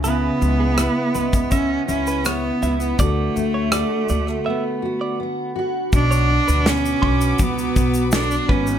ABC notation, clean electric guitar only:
X:1
M:4/4
L:1/16
Q:1/4=82
K:Bdor
V:1 name="Clean electric guitar"
B2 z G B2 B z e z2 B c z e z | d2 z c d2 d z e z2 d z4 | z c z B z2 d'4 z2 A z B z |]